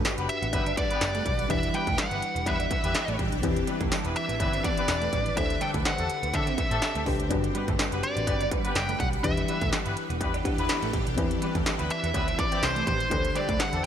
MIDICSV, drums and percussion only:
0, 0, Header, 1, 2, 480
1, 0, Start_track
1, 0, Key_signature, 1, "major"
1, 0, Tempo, 483871
1, 1487, Time_signature, 4, 2, 24, 8
1, 13750, End_track
2, 0, Start_track
2, 0, Title_t, "Drums"
2, 47, Note_on_c, 9, 54, 65
2, 48, Note_on_c, 9, 56, 66
2, 49, Note_on_c, 9, 38, 106
2, 49, Note_on_c, 9, 42, 78
2, 147, Note_off_c, 9, 54, 0
2, 147, Note_off_c, 9, 56, 0
2, 148, Note_off_c, 9, 38, 0
2, 148, Note_off_c, 9, 42, 0
2, 177, Note_on_c, 9, 42, 55
2, 277, Note_off_c, 9, 42, 0
2, 289, Note_on_c, 9, 42, 78
2, 388, Note_off_c, 9, 42, 0
2, 422, Note_on_c, 9, 42, 59
2, 521, Note_off_c, 9, 42, 0
2, 524, Note_on_c, 9, 56, 74
2, 525, Note_on_c, 9, 36, 88
2, 526, Note_on_c, 9, 42, 92
2, 623, Note_off_c, 9, 56, 0
2, 624, Note_off_c, 9, 36, 0
2, 626, Note_off_c, 9, 42, 0
2, 659, Note_on_c, 9, 42, 51
2, 758, Note_off_c, 9, 42, 0
2, 768, Note_on_c, 9, 36, 94
2, 768, Note_on_c, 9, 42, 76
2, 867, Note_off_c, 9, 36, 0
2, 868, Note_off_c, 9, 42, 0
2, 898, Note_on_c, 9, 42, 59
2, 997, Note_off_c, 9, 42, 0
2, 1003, Note_on_c, 9, 42, 88
2, 1005, Note_on_c, 9, 38, 116
2, 1005, Note_on_c, 9, 56, 73
2, 1007, Note_on_c, 9, 54, 67
2, 1102, Note_off_c, 9, 42, 0
2, 1104, Note_off_c, 9, 38, 0
2, 1104, Note_off_c, 9, 56, 0
2, 1106, Note_off_c, 9, 54, 0
2, 1137, Note_on_c, 9, 42, 46
2, 1236, Note_off_c, 9, 42, 0
2, 1246, Note_on_c, 9, 42, 62
2, 1247, Note_on_c, 9, 36, 90
2, 1345, Note_off_c, 9, 42, 0
2, 1346, Note_off_c, 9, 36, 0
2, 1378, Note_on_c, 9, 42, 53
2, 1477, Note_off_c, 9, 42, 0
2, 1487, Note_on_c, 9, 36, 97
2, 1487, Note_on_c, 9, 42, 88
2, 1488, Note_on_c, 9, 56, 74
2, 1586, Note_off_c, 9, 36, 0
2, 1587, Note_off_c, 9, 42, 0
2, 1587, Note_off_c, 9, 56, 0
2, 1618, Note_on_c, 9, 42, 49
2, 1717, Note_off_c, 9, 42, 0
2, 1727, Note_on_c, 9, 42, 67
2, 1827, Note_off_c, 9, 42, 0
2, 1856, Note_on_c, 9, 42, 44
2, 1858, Note_on_c, 9, 36, 92
2, 1955, Note_off_c, 9, 42, 0
2, 1957, Note_off_c, 9, 36, 0
2, 1964, Note_on_c, 9, 54, 66
2, 1964, Note_on_c, 9, 56, 65
2, 1966, Note_on_c, 9, 38, 106
2, 1966, Note_on_c, 9, 42, 76
2, 2064, Note_off_c, 9, 54, 0
2, 2064, Note_off_c, 9, 56, 0
2, 2065, Note_off_c, 9, 38, 0
2, 2065, Note_off_c, 9, 42, 0
2, 2095, Note_on_c, 9, 42, 51
2, 2194, Note_off_c, 9, 42, 0
2, 2207, Note_on_c, 9, 42, 78
2, 2306, Note_off_c, 9, 42, 0
2, 2342, Note_on_c, 9, 42, 54
2, 2441, Note_off_c, 9, 42, 0
2, 2443, Note_on_c, 9, 36, 89
2, 2443, Note_on_c, 9, 56, 72
2, 2446, Note_on_c, 9, 42, 93
2, 2542, Note_off_c, 9, 56, 0
2, 2543, Note_off_c, 9, 36, 0
2, 2545, Note_off_c, 9, 42, 0
2, 2577, Note_on_c, 9, 42, 54
2, 2677, Note_off_c, 9, 42, 0
2, 2685, Note_on_c, 9, 42, 73
2, 2686, Note_on_c, 9, 36, 99
2, 2784, Note_off_c, 9, 42, 0
2, 2785, Note_off_c, 9, 36, 0
2, 2816, Note_on_c, 9, 42, 62
2, 2915, Note_off_c, 9, 42, 0
2, 2922, Note_on_c, 9, 42, 95
2, 2924, Note_on_c, 9, 38, 119
2, 2925, Note_on_c, 9, 56, 75
2, 2926, Note_on_c, 9, 54, 64
2, 3021, Note_off_c, 9, 42, 0
2, 3023, Note_off_c, 9, 38, 0
2, 3024, Note_off_c, 9, 56, 0
2, 3025, Note_off_c, 9, 54, 0
2, 3056, Note_on_c, 9, 42, 47
2, 3155, Note_off_c, 9, 42, 0
2, 3166, Note_on_c, 9, 36, 94
2, 3167, Note_on_c, 9, 42, 61
2, 3265, Note_off_c, 9, 36, 0
2, 3266, Note_off_c, 9, 42, 0
2, 3297, Note_on_c, 9, 42, 51
2, 3396, Note_off_c, 9, 42, 0
2, 3404, Note_on_c, 9, 42, 89
2, 3405, Note_on_c, 9, 36, 102
2, 3409, Note_on_c, 9, 56, 74
2, 3503, Note_off_c, 9, 42, 0
2, 3504, Note_off_c, 9, 36, 0
2, 3508, Note_off_c, 9, 56, 0
2, 3536, Note_on_c, 9, 42, 51
2, 3635, Note_off_c, 9, 42, 0
2, 3645, Note_on_c, 9, 42, 71
2, 3744, Note_off_c, 9, 42, 0
2, 3775, Note_on_c, 9, 42, 44
2, 3777, Note_on_c, 9, 36, 92
2, 3874, Note_off_c, 9, 42, 0
2, 3876, Note_off_c, 9, 36, 0
2, 3884, Note_on_c, 9, 54, 66
2, 3886, Note_on_c, 9, 38, 102
2, 3886, Note_on_c, 9, 42, 79
2, 3886, Note_on_c, 9, 56, 67
2, 3983, Note_off_c, 9, 54, 0
2, 3985, Note_off_c, 9, 38, 0
2, 3985, Note_off_c, 9, 42, 0
2, 3985, Note_off_c, 9, 56, 0
2, 4014, Note_on_c, 9, 42, 54
2, 4113, Note_off_c, 9, 42, 0
2, 4126, Note_on_c, 9, 42, 76
2, 4225, Note_off_c, 9, 42, 0
2, 4259, Note_on_c, 9, 42, 56
2, 4358, Note_off_c, 9, 42, 0
2, 4363, Note_on_c, 9, 36, 96
2, 4366, Note_on_c, 9, 42, 93
2, 4366, Note_on_c, 9, 56, 72
2, 4463, Note_off_c, 9, 36, 0
2, 4465, Note_off_c, 9, 42, 0
2, 4465, Note_off_c, 9, 56, 0
2, 4498, Note_on_c, 9, 42, 49
2, 4597, Note_off_c, 9, 42, 0
2, 4606, Note_on_c, 9, 36, 94
2, 4608, Note_on_c, 9, 42, 76
2, 4706, Note_off_c, 9, 36, 0
2, 4707, Note_off_c, 9, 42, 0
2, 4736, Note_on_c, 9, 42, 59
2, 4835, Note_off_c, 9, 42, 0
2, 4842, Note_on_c, 9, 42, 96
2, 4844, Note_on_c, 9, 38, 113
2, 4846, Note_on_c, 9, 54, 65
2, 4847, Note_on_c, 9, 56, 69
2, 4941, Note_off_c, 9, 42, 0
2, 4943, Note_off_c, 9, 38, 0
2, 4945, Note_off_c, 9, 54, 0
2, 4946, Note_off_c, 9, 56, 0
2, 4976, Note_on_c, 9, 42, 47
2, 5075, Note_off_c, 9, 42, 0
2, 5086, Note_on_c, 9, 36, 91
2, 5086, Note_on_c, 9, 42, 60
2, 5185, Note_off_c, 9, 36, 0
2, 5186, Note_off_c, 9, 42, 0
2, 5217, Note_on_c, 9, 42, 49
2, 5316, Note_off_c, 9, 42, 0
2, 5326, Note_on_c, 9, 36, 100
2, 5327, Note_on_c, 9, 42, 93
2, 5327, Note_on_c, 9, 56, 71
2, 5426, Note_off_c, 9, 36, 0
2, 5426, Note_off_c, 9, 42, 0
2, 5427, Note_off_c, 9, 56, 0
2, 5458, Note_on_c, 9, 42, 49
2, 5557, Note_off_c, 9, 42, 0
2, 5565, Note_on_c, 9, 42, 67
2, 5665, Note_off_c, 9, 42, 0
2, 5696, Note_on_c, 9, 42, 46
2, 5697, Note_on_c, 9, 36, 92
2, 5795, Note_off_c, 9, 42, 0
2, 5797, Note_off_c, 9, 36, 0
2, 5805, Note_on_c, 9, 54, 69
2, 5806, Note_on_c, 9, 56, 68
2, 5807, Note_on_c, 9, 38, 115
2, 5807, Note_on_c, 9, 42, 77
2, 5904, Note_off_c, 9, 54, 0
2, 5905, Note_off_c, 9, 56, 0
2, 5906, Note_off_c, 9, 38, 0
2, 5906, Note_off_c, 9, 42, 0
2, 5936, Note_on_c, 9, 42, 53
2, 6035, Note_off_c, 9, 42, 0
2, 6047, Note_on_c, 9, 42, 78
2, 6146, Note_off_c, 9, 42, 0
2, 6182, Note_on_c, 9, 42, 56
2, 6281, Note_off_c, 9, 42, 0
2, 6284, Note_on_c, 9, 36, 91
2, 6284, Note_on_c, 9, 56, 78
2, 6287, Note_on_c, 9, 42, 97
2, 6383, Note_off_c, 9, 36, 0
2, 6384, Note_off_c, 9, 56, 0
2, 6386, Note_off_c, 9, 42, 0
2, 6419, Note_on_c, 9, 42, 50
2, 6518, Note_off_c, 9, 42, 0
2, 6527, Note_on_c, 9, 36, 98
2, 6528, Note_on_c, 9, 42, 75
2, 6626, Note_off_c, 9, 36, 0
2, 6627, Note_off_c, 9, 42, 0
2, 6659, Note_on_c, 9, 42, 56
2, 6758, Note_off_c, 9, 42, 0
2, 6764, Note_on_c, 9, 42, 88
2, 6766, Note_on_c, 9, 38, 118
2, 6766, Note_on_c, 9, 56, 70
2, 6769, Note_on_c, 9, 54, 65
2, 6864, Note_off_c, 9, 42, 0
2, 6865, Note_off_c, 9, 56, 0
2, 6866, Note_off_c, 9, 38, 0
2, 6868, Note_off_c, 9, 54, 0
2, 6898, Note_on_c, 9, 42, 48
2, 6997, Note_off_c, 9, 42, 0
2, 7007, Note_on_c, 9, 36, 89
2, 7007, Note_on_c, 9, 46, 62
2, 7106, Note_off_c, 9, 36, 0
2, 7106, Note_off_c, 9, 46, 0
2, 7139, Note_on_c, 9, 42, 49
2, 7238, Note_off_c, 9, 42, 0
2, 7247, Note_on_c, 9, 36, 102
2, 7247, Note_on_c, 9, 42, 90
2, 7248, Note_on_c, 9, 56, 73
2, 7346, Note_off_c, 9, 36, 0
2, 7346, Note_off_c, 9, 42, 0
2, 7347, Note_off_c, 9, 56, 0
2, 7380, Note_on_c, 9, 42, 52
2, 7479, Note_off_c, 9, 42, 0
2, 7488, Note_on_c, 9, 42, 71
2, 7587, Note_off_c, 9, 42, 0
2, 7618, Note_on_c, 9, 42, 44
2, 7619, Note_on_c, 9, 36, 96
2, 7718, Note_off_c, 9, 36, 0
2, 7718, Note_off_c, 9, 42, 0
2, 7726, Note_on_c, 9, 56, 67
2, 7728, Note_on_c, 9, 54, 67
2, 7729, Note_on_c, 9, 42, 77
2, 7730, Note_on_c, 9, 38, 113
2, 7825, Note_off_c, 9, 56, 0
2, 7827, Note_off_c, 9, 54, 0
2, 7829, Note_off_c, 9, 38, 0
2, 7829, Note_off_c, 9, 42, 0
2, 7859, Note_on_c, 9, 42, 53
2, 7958, Note_off_c, 9, 42, 0
2, 7969, Note_on_c, 9, 42, 78
2, 8068, Note_off_c, 9, 42, 0
2, 8102, Note_on_c, 9, 42, 56
2, 8201, Note_off_c, 9, 42, 0
2, 8205, Note_on_c, 9, 36, 88
2, 8205, Note_on_c, 9, 56, 80
2, 8208, Note_on_c, 9, 42, 90
2, 8304, Note_off_c, 9, 36, 0
2, 8305, Note_off_c, 9, 56, 0
2, 8307, Note_off_c, 9, 42, 0
2, 8338, Note_on_c, 9, 42, 53
2, 8438, Note_off_c, 9, 42, 0
2, 8447, Note_on_c, 9, 36, 98
2, 8447, Note_on_c, 9, 42, 76
2, 8546, Note_off_c, 9, 36, 0
2, 8546, Note_off_c, 9, 42, 0
2, 8577, Note_on_c, 9, 42, 61
2, 8676, Note_off_c, 9, 42, 0
2, 8683, Note_on_c, 9, 42, 96
2, 8685, Note_on_c, 9, 38, 120
2, 8686, Note_on_c, 9, 56, 71
2, 8688, Note_on_c, 9, 54, 66
2, 8783, Note_off_c, 9, 42, 0
2, 8785, Note_off_c, 9, 38, 0
2, 8785, Note_off_c, 9, 56, 0
2, 8787, Note_off_c, 9, 54, 0
2, 8818, Note_on_c, 9, 42, 50
2, 8917, Note_off_c, 9, 42, 0
2, 8927, Note_on_c, 9, 36, 95
2, 8927, Note_on_c, 9, 42, 63
2, 9026, Note_off_c, 9, 36, 0
2, 9026, Note_off_c, 9, 42, 0
2, 9059, Note_on_c, 9, 42, 52
2, 9158, Note_off_c, 9, 42, 0
2, 9167, Note_on_c, 9, 36, 102
2, 9167, Note_on_c, 9, 42, 88
2, 9169, Note_on_c, 9, 56, 75
2, 9266, Note_off_c, 9, 42, 0
2, 9267, Note_off_c, 9, 36, 0
2, 9268, Note_off_c, 9, 56, 0
2, 9299, Note_on_c, 9, 42, 49
2, 9398, Note_off_c, 9, 42, 0
2, 9408, Note_on_c, 9, 42, 70
2, 9507, Note_off_c, 9, 42, 0
2, 9537, Note_on_c, 9, 42, 45
2, 9539, Note_on_c, 9, 36, 95
2, 9636, Note_off_c, 9, 42, 0
2, 9638, Note_off_c, 9, 36, 0
2, 9646, Note_on_c, 9, 56, 71
2, 9647, Note_on_c, 9, 54, 65
2, 9648, Note_on_c, 9, 42, 77
2, 9649, Note_on_c, 9, 38, 108
2, 9745, Note_off_c, 9, 56, 0
2, 9746, Note_off_c, 9, 54, 0
2, 9747, Note_off_c, 9, 42, 0
2, 9748, Note_off_c, 9, 38, 0
2, 9778, Note_on_c, 9, 42, 53
2, 9877, Note_off_c, 9, 42, 0
2, 9888, Note_on_c, 9, 42, 78
2, 9987, Note_off_c, 9, 42, 0
2, 10022, Note_on_c, 9, 42, 58
2, 10121, Note_off_c, 9, 42, 0
2, 10125, Note_on_c, 9, 36, 91
2, 10125, Note_on_c, 9, 56, 78
2, 10127, Note_on_c, 9, 42, 91
2, 10224, Note_off_c, 9, 36, 0
2, 10224, Note_off_c, 9, 56, 0
2, 10226, Note_off_c, 9, 42, 0
2, 10259, Note_on_c, 9, 42, 51
2, 10359, Note_off_c, 9, 42, 0
2, 10368, Note_on_c, 9, 36, 100
2, 10369, Note_on_c, 9, 42, 74
2, 10467, Note_off_c, 9, 36, 0
2, 10468, Note_off_c, 9, 42, 0
2, 10499, Note_on_c, 9, 42, 60
2, 10598, Note_off_c, 9, 42, 0
2, 10605, Note_on_c, 9, 42, 97
2, 10607, Note_on_c, 9, 38, 110
2, 10607, Note_on_c, 9, 56, 71
2, 10609, Note_on_c, 9, 54, 64
2, 10704, Note_off_c, 9, 42, 0
2, 10706, Note_off_c, 9, 38, 0
2, 10706, Note_off_c, 9, 56, 0
2, 10708, Note_off_c, 9, 54, 0
2, 10738, Note_on_c, 9, 42, 49
2, 10837, Note_off_c, 9, 42, 0
2, 10847, Note_on_c, 9, 36, 95
2, 10847, Note_on_c, 9, 42, 61
2, 10946, Note_off_c, 9, 36, 0
2, 10946, Note_off_c, 9, 42, 0
2, 10979, Note_on_c, 9, 42, 51
2, 11078, Note_off_c, 9, 42, 0
2, 11087, Note_on_c, 9, 36, 98
2, 11087, Note_on_c, 9, 42, 98
2, 11089, Note_on_c, 9, 56, 73
2, 11186, Note_off_c, 9, 42, 0
2, 11187, Note_off_c, 9, 36, 0
2, 11188, Note_off_c, 9, 56, 0
2, 11219, Note_on_c, 9, 42, 52
2, 11318, Note_off_c, 9, 42, 0
2, 11328, Note_on_c, 9, 42, 70
2, 11428, Note_off_c, 9, 42, 0
2, 11458, Note_on_c, 9, 42, 45
2, 11459, Note_on_c, 9, 36, 92
2, 11557, Note_off_c, 9, 42, 0
2, 11558, Note_off_c, 9, 36, 0
2, 11567, Note_on_c, 9, 54, 68
2, 11567, Note_on_c, 9, 56, 68
2, 11568, Note_on_c, 9, 42, 76
2, 11569, Note_on_c, 9, 38, 108
2, 11666, Note_off_c, 9, 54, 0
2, 11666, Note_off_c, 9, 56, 0
2, 11667, Note_off_c, 9, 42, 0
2, 11668, Note_off_c, 9, 38, 0
2, 11697, Note_on_c, 9, 42, 55
2, 11796, Note_off_c, 9, 42, 0
2, 11808, Note_on_c, 9, 42, 81
2, 11908, Note_off_c, 9, 42, 0
2, 11942, Note_on_c, 9, 42, 60
2, 12041, Note_off_c, 9, 42, 0
2, 12045, Note_on_c, 9, 36, 96
2, 12047, Note_on_c, 9, 42, 95
2, 12047, Note_on_c, 9, 56, 78
2, 12144, Note_off_c, 9, 36, 0
2, 12146, Note_off_c, 9, 56, 0
2, 12147, Note_off_c, 9, 42, 0
2, 12181, Note_on_c, 9, 42, 51
2, 12280, Note_off_c, 9, 42, 0
2, 12288, Note_on_c, 9, 36, 98
2, 12288, Note_on_c, 9, 42, 73
2, 12387, Note_off_c, 9, 36, 0
2, 12387, Note_off_c, 9, 42, 0
2, 12419, Note_on_c, 9, 42, 57
2, 12518, Note_off_c, 9, 42, 0
2, 12525, Note_on_c, 9, 56, 75
2, 12526, Note_on_c, 9, 42, 87
2, 12527, Note_on_c, 9, 38, 115
2, 12530, Note_on_c, 9, 54, 68
2, 12624, Note_off_c, 9, 56, 0
2, 12625, Note_off_c, 9, 42, 0
2, 12627, Note_off_c, 9, 38, 0
2, 12629, Note_off_c, 9, 54, 0
2, 12660, Note_on_c, 9, 42, 51
2, 12759, Note_off_c, 9, 42, 0
2, 12768, Note_on_c, 9, 36, 91
2, 12768, Note_on_c, 9, 42, 64
2, 12867, Note_off_c, 9, 36, 0
2, 12867, Note_off_c, 9, 42, 0
2, 12900, Note_on_c, 9, 42, 51
2, 12999, Note_off_c, 9, 42, 0
2, 13007, Note_on_c, 9, 56, 76
2, 13008, Note_on_c, 9, 36, 104
2, 13008, Note_on_c, 9, 42, 95
2, 13106, Note_off_c, 9, 56, 0
2, 13107, Note_off_c, 9, 36, 0
2, 13107, Note_off_c, 9, 42, 0
2, 13140, Note_on_c, 9, 42, 51
2, 13239, Note_off_c, 9, 42, 0
2, 13248, Note_on_c, 9, 42, 72
2, 13347, Note_off_c, 9, 42, 0
2, 13379, Note_on_c, 9, 36, 96
2, 13379, Note_on_c, 9, 42, 46
2, 13479, Note_off_c, 9, 36, 0
2, 13479, Note_off_c, 9, 42, 0
2, 13485, Note_on_c, 9, 56, 71
2, 13488, Note_on_c, 9, 54, 65
2, 13489, Note_on_c, 9, 42, 79
2, 13490, Note_on_c, 9, 38, 110
2, 13584, Note_off_c, 9, 56, 0
2, 13587, Note_off_c, 9, 54, 0
2, 13588, Note_off_c, 9, 42, 0
2, 13589, Note_off_c, 9, 38, 0
2, 13617, Note_on_c, 9, 42, 55
2, 13716, Note_off_c, 9, 42, 0
2, 13750, End_track
0, 0, End_of_file